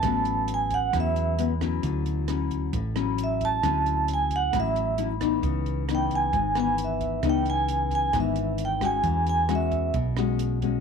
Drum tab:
HH |xxxxxxxx|xxxxxxxx|xxxxxxxx|xxxxxxxx|
SD |r---r--r|--r--r--|r---r--r|--r--r--|
BD |o--oo--o|o--oo--o|o--oo--o|o--oo--o|

HH |xxxxxxxx|xxxxxxxx|
SD |r---r--r|--r--r--|
BD |o--oo--o|o--oo--o|